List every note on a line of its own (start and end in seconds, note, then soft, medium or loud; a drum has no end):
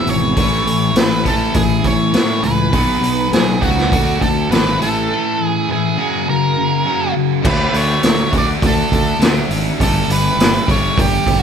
0.00 0.37 E2 medium
0.00 0.35 B2 medium
0.00 0.35 E3 medium
0.00 0.36 G#3 medium
0.00 0.35 B3 medium
0.00 0.35 E4 medium
0.07 0.33 G#1 medium
0.07 0.36 E2 medium
0.07 0.36 B2 medium
0.07 1.00 C#5 medium
0.07 open hi-hat soft
0.36 0.63 A1 medium
0.36 0.65 A2 medium
0.36 0.65 E3 medium
0.36 0.66 A3 medium
0.36 1.24 C#4 medium
0.36 1.22 E4 medium
0.36 kick medium
0.36 open hi-hat medium
0.66 0.92 A1 medium
0.66 0.93 A2 medium
0.66 0.94 E3 medium
0.66 open hi-hat soft
0.95 1.48 A1 medium
0.95 1.23 A2 medium
0.95 1.24 E3 medium
0.95 1.24 B4 medium
0.95 snare medium
0.95 open hi-hat medium
1.24 1.53 A2 medium
1.24 1.54 E3 medium
1.24 1.54 A3 medium
1.24 2.71 C#4 medium
1.24 2.71 E4 medium
1.24 1.54 A4 medium
1.24 kick medium
1.24 open hi-hat soft
1.54 1.81 A1 medium
1.54 1.82 A2 medium
1.54 1.82 E3 medium
1.54 1.86 G#4 medium
1.54 kick loud
1.54 open hi-hat medium
1.84 2.11 A1 medium
1.84 2.11 A2 medium
1.84 2.12 E3 medium
1.84 2.46 C#5 medium
1.84 kick medium
1.84 open hi-hat soft
2.13 2.40 A2 medium
2.13 2.42 A2 medium
2.13 2.43 E3 medium
2.13 2.43 A3 medium
2.13 snare medium
2.13 open hi-hat medium
2.43 2.73 C#2 medium
2.43 2.71 A2 medium
2.43 2.71 E3 medium
2.43 3.28 B4 medium
2.43 open hi-hat soft
2.72 2.99 B1 medium
2.72 3.01 B2 medium
2.72 3.01 F#3 medium
2.72 3.01 B3 medium
2.72 3.60 D#4 medium
2.72 3.59 F#4 medium
2.72 kick loud
2.72 open hi-hat medium
3.01 3.28 B1 medium
3.01 3.30 B2 medium
3.01 3.30 F#3 medium
3.01 open hi-hat soft
3.31 3.58 B1 medium
3.31 3.59 B2 medium
3.31 3.59 F#3 medium
3.31 3.63 G#4 medium
3.31 snare medium
3.31 open hi-hat medium
3.61 3.88 C#2 medium
3.61 3.90 B2 medium
3.61 3.90 F#3 medium
3.61 3.90 B3 medium
3.61 3.89 D#4 medium
3.61 3.89 F#4 medium
3.61 4.23 F#4 medium
3.61 kick medium
3.61 open hi-hat soft
3.78 snare soft
3.92 4.18 D2 medium
3.92 4.19 D3 medium
3.92 4.79 F#3 medium
3.92 4.19 A3 medium
3.92 4.20 D4 medium
3.92 4.80 F#4 medium
3.92 kick loud
3.92 open hi-hat medium
4.20 4.48 D2 medium
4.20 4.47 D3 medium
4.20 4.47 A3 medium
4.20 4.51 A4 medium
4.20 kick medium
4.20 open hi-hat soft
4.50 4.77 G#1 medium
4.50 4.78 D3 medium
4.50 4.79 A3 medium
4.50 4.79 D4 medium
4.50 4.81 B4 medium
4.50 snare loud
4.50 open hi-hat medium
4.80 5.07 A1 medium
4.80 5.08 A2 medium
4.80 5.08 E3 medium
4.80 5.08 A3 medium
4.80 5.68 C#4 medium
4.80 5.43 A4 medium
4.80 5.69 A4 medium
4.80 open hi-hat soft
5.10 5.37 A2 medium
5.10 5.37 E3 medium
5.10 5.38 A3 medium
5.38 5.65 A2 medium
5.38 5.65 E3 medium
5.43 5.72 G#4 medium
5.69 5.95 A2 medium
5.69 5.95 E3 medium
5.69 5.97 A3 medium
5.69 5.98 C#4 medium
5.69 6.29 G#4 medium
5.69 5.98 A4 medium
5.98 6.26 F#2 medium
5.98 6.26 C#3 medium
5.98 6.26 F#3 medium
5.98 6.86 A#3 medium
5.98 6.86 C#4 medium
5.98 6.86 F#4 medium
6.28 6.54 F#2 medium
6.28 6.54 C#3 medium
6.28 7.13 A#4 medium
6.58 6.84 F#2 medium
6.58 6.84 C#3 medium
6.86 7.14 F#2 medium
6.86 7.13 C#3 medium
6.86 7.14 F#3 medium
6.86 7.44 A#3 medium
6.86 7.44 C#4 medium
6.86 7.45 F#4 medium
7.14 7.42 F#2 medium
7.14 7.42 C#3 medium
7.43 7.64 D2 medium
7.43 8.30 D3 medium
7.43 8.33 A3 medium
7.43 8.31 D4 medium
7.43 kick loud
7.43 crash medium
7.47 8.31 F#4 medium
7.47 7.68 B4 medium
7.69 7.93 D2 medium
7.69 7.75 B4 medium
7.74 8.30 C#5 medium
7.74 open hi-hat medium
8.03 8.23 D2 medium
8.03 snare loud
8.03 open hi-hat medium
8.32 8.52 D2 medium
8.32 9.19 D3 medium
8.32 9.21 A3 medium
8.32 9.19 D4 medium
8.32 9.19 F#4 medium
8.32 kick medium
8.32 open hi-hat soft
8.38 8.45 D5 medium
8.62 8.82 D2 medium
8.62 kick loud
8.62 open hi-hat medium
8.66 9.19 A4 medium
8.92 9.12 D2 medium
8.92 kick medium
8.92 open hi-hat soft
9.19 9.40 D2 medium
9.19 9.78 D3 medium
9.19 9.81 A3 medium
9.19 9.79 D4 medium
9.19 snare loud
9.19 open hi-hat medium
9.24 9.79 F#4 medium
9.49 9.69 G#1 medium
9.49 open hi-hat medium
9.78 9.99 G1 medium
9.78 10.65 G2 medium
9.78 10.66 D3 medium
9.78 10.66 G3 medium
9.78 10.68 A3 medium
9.78 10.66 D4 medium
9.78 10.65 G4 medium
9.78 kick medium
9.78 open hi-hat medium
9.83 10.09 A4 medium
10.08 10.28 G1 medium
10.08 10.71 B4 medium
10.08 open hi-hat medium
10.37 10.57 G1 medium
10.37 open hi-hat medium
10.41 snare loud
10.66 10.88 G1 medium
10.66 11.43 G2 medium
10.66 11.43 D3 medium
10.66 11.43 G3 medium
10.66 11.43 A3 medium
10.66 11.43 D4 medium
10.66 11.43 G4 medium
10.66 kick medium
10.66 open hi-hat medium
10.71 11.00 C#5 medium
10.97 11.17 G1 medium
10.97 11.43 G4 medium
10.97 kick loud
10.97 open hi-hat medium
11.26 11.43 G1 medium
11.26 kick medium
11.26 open hi-hat medium